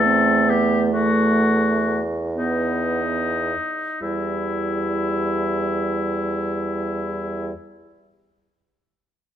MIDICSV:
0, 0, Header, 1, 5, 480
1, 0, Start_track
1, 0, Key_signature, 1, "minor"
1, 0, Tempo, 872093
1, 514, Time_signature, 6, 3, 24, 8
1, 514, Tempo, 937500
1, 994, Tempo, 1025641
1, 1474, Tempo, 1115242
1, 1954, Tempo, 1041667
1, 4414, End_track
2, 0, Start_track
2, 0, Title_t, "Oboe"
2, 0, Program_c, 0, 68
2, 0, Note_on_c, 0, 69, 71
2, 275, Note_on_c, 0, 67, 65
2, 284, Note_off_c, 0, 69, 0
2, 445, Note_off_c, 0, 67, 0
2, 516, Note_on_c, 0, 66, 63
2, 1054, Note_off_c, 0, 66, 0
2, 1230, Note_on_c, 0, 63, 43
2, 1937, Note_off_c, 0, 63, 0
2, 1954, Note_on_c, 0, 64, 40
2, 3567, Note_off_c, 0, 64, 0
2, 4414, End_track
3, 0, Start_track
3, 0, Title_t, "Clarinet"
3, 0, Program_c, 1, 71
3, 0, Note_on_c, 1, 57, 50
3, 1064, Note_off_c, 1, 57, 0
3, 1228, Note_on_c, 1, 59, 35
3, 1749, Note_off_c, 1, 59, 0
3, 1956, Note_on_c, 1, 64, 34
3, 3569, Note_off_c, 1, 64, 0
3, 4414, End_track
4, 0, Start_track
4, 0, Title_t, "French horn"
4, 0, Program_c, 2, 60
4, 30, Note_on_c, 2, 60, 50
4, 266, Note_on_c, 2, 59, 48
4, 274, Note_off_c, 2, 60, 0
4, 510, Note_off_c, 2, 59, 0
4, 513, Note_on_c, 2, 57, 52
4, 1053, Note_off_c, 2, 57, 0
4, 1229, Note_on_c, 2, 59, 43
4, 1576, Note_off_c, 2, 59, 0
4, 1957, Note_on_c, 2, 55, 38
4, 3570, Note_off_c, 2, 55, 0
4, 4414, End_track
5, 0, Start_track
5, 0, Title_t, "Bassoon"
5, 0, Program_c, 3, 70
5, 0, Note_on_c, 3, 40, 50
5, 1750, Note_off_c, 3, 40, 0
5, 1956, Note_on_c, 3, 40, 34
5, 3568, Note_off_c, 3, 40, 0
5, 4414, End_track
0, 0, End_of_file